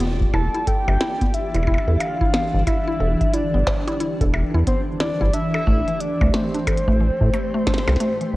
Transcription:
Already playing: acid bass E1, ambient pad G4 D5 G5
0.00 synth arpeggio sound B3, ambient pad D4, closed hi-hat
0.05 ambient pad E3
0.21 kick
0.34 acid bass E1, synth arpeggio sound E4, soft synth lead A5, percussion blips
0.54 synth arpeggio sound E4, closed hi-hat
0.67 synth arpeggio sound A4, soft synth lead G5, kick, closed hi-hat
0.88 acid bass G1, synth arpeggio sound E5, percussion blips
1.00 synth arpeggio sound E4, snare
1.21 synth arpeggio sound B3, kick, closed hi-hat
1.34 soft synth lead E5, closed hi-hat
1.54 acid bass E1, synth arpeggio sound E4, closed hi-hat, percussion blips
1.56 percussion blips
1.63 percussion blips
1.67 synth arpeggio sound E4, kick, percussion blips
1.74 percussion blips
1.78 percussion blips
1.88 acid bass E2, synth arpeggio sound A4
2.00 synth arpeggio sound E5, soft synth lead F5, closed hi-hat, percussion blips
2.21 synth arpeggio sound E4, kick
2.34 synth arpeggio sound B3, snare
2.54 acid bass G1
2.67 synth arpeggio sound E4, soft synth lead E5, kick, closed hi-hat, percussion blips
2.88 synth arpeggio sound E4
3.00 acid bass E1, synth arpeggio sound A4
3.21 synth arpeggio sound E5, kick, closed hi-hat
3.34 synth arpeggio sound E4, soft synth lead D5, closed hi-hat
3.54 acid bass G1, synth arpeggio sound B3
3.67 kick, snare
3.88 synth arpeggio sound E4, closed hi-hat, percussion blips
4.00 synth arpeggio sound E4, closed hi-hat
4.21 acid bass E1, synth arpeggio sound A4, kick, closed hi-hat
4.34 synth arpeggio sound E5, percussion blips
4.54 acid bass E2, synth arpeggio sound E4
4.67 synth arpeggio sound B3, soft synth lead C5, kick, closed hi-hat
5.00 synth arpeggio sound E4, soft synth lead D5, snare, percussion blips
5.21 acid bass G1, synth arpeggio sound E4, kick
5.34 ambient pad A3, synth arpeggio sound D4, soft synth lead E5, closed hi-hat
5.48 ambient pad C5
5.54 synth arpeggio sound A4, soft synth lead E5, percussion blips
5.67 acid bass A1, synth arpeggio sound A3, kick
5.88 synth arpeggio sound E3, closed hi-hat
6.00 soft synth lead D5, closed hi-hat
6.21 acid bass C2, synth arpeggio sound A3, kick, percussion blips
6.34 synth arpeggio sound A3, soft synth lead C5, snare
6.54 synth arpeggio sound D4, closed hi-hat
6.67 synth arpeggio sound A4, kick, closed hi-hat, percussion blips
6.77 closed hi-hat
6.88 acid bass A1, synth arpeggio sound A3
7.00 synth arpeggio sound E3
7.21 acid bass A2, kick
7.34 synth arpeggio sound A3, closed hi-hat, percussion blips
7.54 synth arpeggio sound A3
7.67 synth arpeggio sound D4, kick, snare
7.74 snare
7.78 snare
7.88 acid bass C2, synth arpeggio sound A4, snare, percussion blips
7.89 snare
7.96 snare
8.00 synth arpeggio sound A3, closed hi-hat
8.21 synth arpeggio sound E3, closed hi-hat

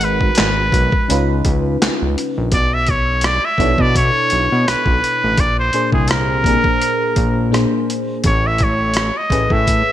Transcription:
Already playing: analog synth bass G#1, fm electric piano G#3 D#4 F#4 A#4 B4
0.01 muted trumpet B4, closed hi-hat
0.21 kick
0.35 snare, clap, closed hi-hat
0.39 analog synth bass G#1
0.72 analog synth bass B1, kick, closed hi-hat
0.92 kick
1.08 analog synth bass C#2, fm electric piano C#3 C#4 D#4 F4 B4, closed hi-hat
1.45 analog synth bass C#2, kick, closed hi-hat
1.82 analog synth bass C#2, snare, clap, closed hi-hat
2.02 analog synth bass C#2
2.18 closed hi-hat
2.38 analog synth bass A#1
2.52 analog synth bass B1, muted trumpet D5, kick, closed hi-hat
2.74 muted trumpet E5
2.87 muted trumpet C#5, kick, closed hi-hat
3.21 cross-stick, closed hi-hat
3.25 muted trumpet D5
3.45 muted trumpet E5
3.58 analog synth bass B1, fm electric piano B2 B3 D4 E4 A4 C#5, kick, closed hi-hat
3.78 analog synth bass B2, muted trumpet D5, kick
3.95 muted trumpet C#5, kick, closed hi-hat
4.30 analog synth bass B1, closed hi-hat
4.52 analog synth bass B2
4.68 analog synth bass B1, muted trumpet B4, cross-stick, closed hi-hat
4.86 analog synth bass B1, kick
5.04 closed hi-hat
5.24 analog synth bass A1
5.38 analog synth bass A#1, muted trumpet D5, kick, closed hi-hat
5.59 muted trumpet C5
5.73 fm electric piano A#2 A#3 D4 G#4 C5, closed hi-hat
5.92 analog synth bass C2, muted trumpet G#4, kick
6.08 muted trumpet A#4, cross-stick, closed hi-hat
6.44 fm electric piano A#2 A#3 D4 G#4 A#4, kick, closed hi-hat
6.64 kick
6.82 closed hi-hat
7.16 analog synth bass A#1, kick, closed hi-hat
7.51 fm electric piano A#2 A#3 D4 G#4 C5, cross-stick, closed hi-hat
7.90 closed hi-hat
8.24 analog synth bass A1, muted trumpet C#5, kick, closed hi-hat
8.47 muted trumpet E5
8.58 kick, closed hi-hat
8.63 muted trumpet C#5
8.94 cross-stick, closed hi-hat
9.17 muted trumpet D#5
9.30 analog synth bass A1, fm electric piano A2 A3 C#4 G#4 B4, kick, closed hi-hat
9.50 analog synth bass A2, muted trumpet E5, kick
9.67 kick, closed hi-hat

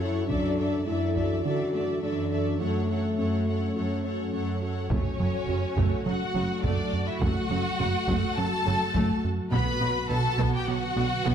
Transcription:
Already playing: cello section F#2, analog synth pad F#3 C#4 F#4 A4
0.00 french horn section E4, synth arpeggio sound F#4, viola section A4, violin section C#5 F#5
0.28 cello section F#2, synth arpeggio sound D3, analog synth pad E3 D4 F#4 A4, french horn section D4, viola section A4, violin section D5 E5, taiko
0.58 synth arpeggio sound D4, viola section A4, violin section D5 E5
0.86 cello section F#2, synth arpeggio sound A3, french horn section E4, viola section A4, violin section D5 E5
1.14 synth arpeggio sound F#3, viola section A4, violin section D5 E5, taiko
1.44 cello section F#2, synth arpeggio sound D3, french horn section F#4, viola section A4, violin section D5 E5
1.73 synth arpeggio sound A3, viola section A4, violin section D5 E5
2.02 cello section F#2, synth arpeggio sound A3, french horn section D4, viola section A4, violin section D5 E5
2.31 synth arpeggio sound D4, viola section A4, violin section D5 E5
2.60 cello section F#2, analog synth pad F#3 C#4, synth arpeggio sound F#3, french horn section A3, viola section A4, violin section C#5 F#5
2.89 synth arpeggio sound F#4, viola section A4, violin section C#5 F#5
3.18 cello section F#2, synth arpeggio sound C#4, viola section A4, violin section C#5 F#5
3.47 synth arpeggio sound A3, viola section A4, violin section C#5 F#5
3.75 cello section F#2, synth arpeggio sound F#3, viola section A4, violin section C#5 F#5
4.04 synth arpeggio sound C#4, viola section A4, violin section C#5 F#5
4.32 cello section F#2, synth arpeggio sound C#4, viola section A4, violin section C#5 F#5
4.61 synth arpeggio sound F#4, viola section A4, violin section C#5 F#5
4.90 double bass section F#1, cello section F#2, analog synth bass F#2, analog synth pad F#3 A3 F#4 A4, synth arpeggio sound F#3, french horn section A3 F#4, viola section A3 F#4, violin section C#4 C#5, taiko
5.19 double bass section F#1, cello section F#2, analog synth bass F#3, viola section F#3, synth arpeggio sound C#4
5.48 double bass section F#1, cello section F#2, analog synth bass F#2, viola section C#3, synth arpeggio sound F#4
5.77 double bass section F#1, cello section F#2, analog synth bass F#2, synth arpeggio sound F#3, viola section A3, taiko
6.06 double bass section F#1, cello section F#2, analog synth bass F#3, viola section F#3, synth arpeggio sound C#4, violin section F#4 F#5
6.35 double bass section F#1, cello section F#2, viola section C#3, analog synth bass F#3, synth arpeggio sound C#4
6.63 double bass section F#1, cello section F#2, analog synth bass F#2, synth arpeggio sound F#3, viola section A3, violin section D4 D5, taiko
6.93 analog synth bass F#2
7.07 violin section E4 E5
7.21 double bass section F#1, cello section F#2, analog synth bass F#2, synth arpeggio sound F#3, viola section A3, violin section F#4 F#5, taiko
7.50 double bass section F#1, cello section F#2, analog synth bass F#3, viola section F#3, synth arpeggio sound C#4
7.79 double bass section F#1, cello section F#2, analog synth bass F#2, viola section C#3, synth arpeggio sound F#4
8.08 double bass section F#1, cello section F#2, analog synth bass F#2, synth arpeggio sound F#3, viola section A3, taiko
8.36 double bass section F#1, cello section F#2, viola section F#3, analog synth bass F#3, synth arpeggio sound C#4, violin section A4 A5
8.65 double bass section F#1, cello section F#2, viola section C#3, analog synth bass F#3, synth arpeggio sound C#4
8.94 double bass section F#1, cello section F#2, analog synth bass F#2, synth arpeggio sound F#3, viola section A3, taiko
9.24 analog synth bass F#2
9.52 double bass section B1, cello section B2, analog synth bass B2, analog synth pad D3 F#3 F#4 B4, viola section B3 F#4, synth arpeggio sound B3, french horn section B3 F#4, violin section B4 B5, taiko
9.81 double bass section B1, cello section B2, viola section F#3, analog synth bass B3, synth arpeggio sound F#4
10.09 double bass section B1, cello section B2, analog synth bass B2, viola section D3, violin section A4 A5, synth arpeggio sound B4
10.38 double bass section B1, cello section B2, analog synth bass B2, viola section B3, synth arpeggio sound B3, taiko
10.54 violin section G4 G5
10.67 double bass section B1, cello section B2, viola section F#3, analog synth bass B3, synth arpeggio sound F#4, violin section F#4 F#5
10.96 double bass section B1, cello section B2, viola section D3, analog synth bass B3, synth arpeggio sound F#4
11.25 double bass section B1, cello section B2, analog synth bass B2, viola section B3, synth arpeggio sound B3, taiko

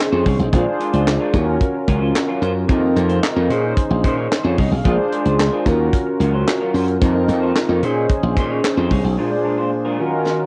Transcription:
Already playing: analog polysynth C#4 D#4 G#4 C5
0.00 clap
0.12 slap bass F2, clean electric guitar C#4 D#4 G#4 C5
0.25 slap bass C2, clean electric guitar C#4 D#4 G#4 C#5, kick, open hi-hat
0.39 slap bass B1, muted clean electric guitar stroke, closed hi-hat
0.52 slap bass A#1, clean electric guitar G#3 D4 F4 A#4, analog polysynth C4 F4 G#4 C5, kick, closed hi-hat
0.59 analog polysynth D4
0.66 muted clean electric guitar stroke
0.79 clean electric guitar G#3 D4 F4 A#4, closed hi-hat
0.93 slap bass C#2, clean electric guitar G#3 D4 F4 C5, closed hi-hat
1.07 muted clean electric guitar stroke, snare, clap, closed hi-hat
1.20 clean electric guitar G#3 D4 F4 A#4
1.33 slap bass D#2, clean electric guitar F#3 C#4 F4 A#4, analog polysynth C#4 F4 F#4 A#4, kick, closed hi-hat
1.47 muted clean electric guitar stroke
1.61 muted clean electric guitar stroke, kick, closed hi-hat
1.75 muted clean electric guitar stroke
1.88 slap bass C#2, clean electric guitar F#3 C#4 F4 A#4, kick, closed hi-hat
2.01 clean electric guitar F#3 C#4 F4 C5
2.15 muted clean electric guitar stroke, snare, clap, closed hi-hat
2.28 clean electric guitar F#3 C#4 F4 A#4
2.41 slap bass F#2, clean electric guitar F#3 C#4 F4 C5, closed hi-hat
2.55 muted clean electric guitar stroke
2.68 slap bass F2, clean electric guitar A#3 D#4 F4 A#4, analog polysynth C4 D#4 F4 A#4, kick, closed hi-hat
2.82 muted clean electric guitar stroke
2.96 slap bass F2, clean electric guitar A#3 D#4 F4 A#4, closed hi-hat
3.09 clean electric guitar A#3 D#4 F4 C5, closed hi-hat
3.23 muted clean electric guitar stroke, snare, clap, closed hi-hat
3.36 slap bass F2, clean electric guitar A#3 D#4 F4 A#4
3.49 slap bass A#2, clean electric guitar C#4 D#4 G#4 C5, analog polysynth C#4 D#4 G#4 C5, closed hi-hat
3.63 muted clean electric guitar stroke
3.76 muted clean electric guitar stroke, kick, closed hi-hat
3.90 slap bass A#1, muted clean electric guitar stroke
4.03 slap bass A#2, clean electric guitar C#4 D#4 G#4 C5, kick, closed hi-hat
4.17 clean electric guitar C#4 D#4 G#4 C#5
4.30 analog polysynth D#4 C5, muted clean electric guitar stroke, snare, clap, closed hi-hat
4.43 slap bass F2, clean electric guitar C#4 D#4 G#4 C5, analog polysynth F4 C#5
4.57 slap bass C2, clean electric guitar C#4 D#4 G#4 C#5, analog polysynth D#5, kick, open hi-hat
4.71 slap bass B1, analog polysynth G#4 F5, muted clean electric guitar stroke
4.84 slap bass A#1, clean electric guitar G#3 D4 F4 A#4, analog polysynth D4 F4 G#4 C5, kick, closed hi-hat
4.98 muted clean electric guitar stroke
5.12 clean electric guitar G#3 D4 F4 A#4, closed hi-hat
5.25 slap bass C#2, clean electric guitar G#3 D4 F4 C5, closed hi-hat
5.39 muted clean electric guitar stroke, snare, clap, closed hi-hat
5.52 clean electric guitar G#3 D4 F4 A#4
5.66 slap bass D#2, clean electric guitar F#3 C#4 F4 A#4, analog polysynth C#4 F4 F#4 A#4, kick, closed hi-hat
5.79 muted clean electric guitar stroke
5.93 muted clean electric guitar stroke, kick, closed hi-hat
6.07 muted clean electric guitar stroke
6.20 slap bass C#2, clean electric guitar F#3 C#4 F4 A#4, closed hi-hat
6.34 clean electric guitar F#3 C#4 F4 C5
6.47 muted clean electric guitar stroke, snare, clap, closed hi-hat
6.61 clean electric guitar F#3 C#4 F4 A#4
6.74 slap bass F#2, clean electric guitar F#3 C#4 F4 C5, open hi-hat
6.88 muted clean electric guitar stroke, closed hi-hat
7.01 slap bass F2, clean electric guitar A#3 D#4 F4 A#4, analog polysynth C4 D#4 F4 A#4, kick, closed hi-hat
7.15 muted clean electric guitar stroke
7.28 slap bass F2, clean electric guitar A#3 D#4 F4 A#4, closed hi-hat
7.42 clean electric guitar A#3 D#4 F4 C5
7.55 muted clean electric guitar stroke, snare, clap, closed hi-hat
7.69 slap bass F2, clean electric guitar A#3 D#4 F4 A#4
7.82 slap bass A#2, analog polysynth C#4 D#4 G#4 C5, clean electric guitar C#4 D#4 G#4 C5, closed hi-hat
7.96 muted clean electric guitar stroke
8.09 muted clean electric guitar stroke, kick, closed hi-hat
8.23 slap bass A#1, muted clean electric guitar stroke
8.36 slap bass A#2, clean electric guitar C#4 D#4 G#4 C5, kick, closed hi-hat
8.50 clean electric guitar C#4 D#4 G#4 C#5
8.64 muted clean electric guitar stroke, snare, clap, closed hi-hat
8.77 slap bass F2, clean electric guitar C#4 D#4 G#4 C5
8.91 slap bass C2, clean electric guitar C#4 D#4 G#4 C#5, kick, open hi-hat
9.04 slap bass B1, muted clean electric guitar stroke
9.17 analog polysynth A#2 D4 F4 G#4 C5, clean electric guitar G#3 D4 F4 A#4
9.31 muted clean electric guitar stroke
9.44 clean electric guitar G#3 D4 F4 A#4
9.58 clean electric guitar G#3 D4 F4 C5
9.72 muted clean electric guitar stroke
9.85 clean electric guitar G#3 D4 F4 A#4
9.98 analog polysynth D#3 C#4 F4 F#4 A#4, clean electric guitar F#3 C#4 F4 A#4
10.12 muted clean electric guitar stroke
10.26 muted clean electric guitar stroke, snare
10.39 muted clean electric guitar stroke

